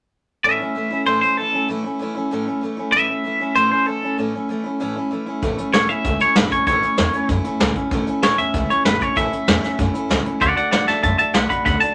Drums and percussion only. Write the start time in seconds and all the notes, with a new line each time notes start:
5.42 kick, closed hi-hat
5.58 closed hi-hat
5.74 snare, closed hi-hat
5.89 closed hi-hat
6.04 kick, closed hi-hat
6.20 closed hi-hat
6.36 snare, closed hi-hat
6.51 kick, closed hi-hat
6.67 kick, closed hi-hat
6.83 closed hi-hat
6.98 snare, closed hi-hat
7.13 closed hi-hat
7.29 kick, closed hi-hat
7.44 closed hi-hat
7.60 snare, closed hi-hat
7.75 kick, closed hi-hat
7.91 kick, closed hi-hat
8.07 closed hi-hat
8.23 snare, closed hi-hat
8.39 closed hi-hat
8.54 kick, closed hi-hat
8.70 closed hi-hat
8.85 snare, closed hi-hat
9.01 kick, closed hi-hat
9.17 kick, closed hi-hat
9.33 closed hi-hat
9.48 snare, closed hi-hat
9.64 snare, closed hi-hat
9.79 kick, closed hi-hat
9.95 closed hi-hat
10.10 snare, closed hi-hat
10.26 closed hi-hat
10.41 kick, closed hi-hat
10.57 closed hi-hat
10.72 snare, closed hi-hat
10.88 snare, closed hi-hat
11.03 kick, closed hi-hat
11.19 closed hi-hat
11.34 snare, closed hi-hat
11.50 kick, closed hi-hat
11.66 kick, closed hi-hat
11.82 closed hi-hat